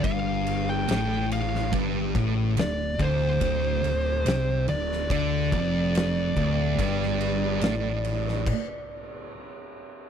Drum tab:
CC |----------------|----------------|--------x-------|
RD |x-x-x-x-x-x-x-x-|x-x-x-x-x-x-x-x-|x-x-x-x---------|
SD |----o--o----o---|----o--o----o---|-o--o--o--------|
BD |o-------o-o---o-|o-------o-o---o-|o-------o-------|